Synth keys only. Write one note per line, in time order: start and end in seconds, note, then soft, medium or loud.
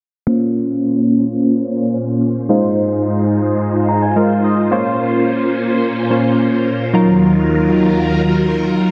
0.27 2.45 A#3 medium
0.27 2.46 C#4 medium
0.27 2.46 F4 medium
0.27 2.46 C5 medium
2.49 4.13 G#3 medium
2.49 4.13 D#4 medium
2.49 4.13 F4 medium
2.49 4.13 C5 medium
3.89 4.01 A#5 medium
4.02 4.15 G#5 medium
4.16 4.72 G#3 medium
4.16 4.72 D#4 medium
4.16 4.71 F4 medium
4.16 4.72 A#4 medium
4.16 4.42 F5 medium
4.44 4.70 D#5 medium
4.71 6.08 A#3 medium
4.71 6.08 C#4 medium
4.71 6.08 F4 medium
4.71 6.08 C5 medium
6.11 6.94 A#3 medium
6.11 6.94 C#4 soft
6.11 6.93 F4 soft
6.11 6.94 C5 medium
6.94 8.91 F#3 medium
6.94 8.91 D#4 medium
6.94 8.91 F4 medium
6.94 8.91 A#4 medium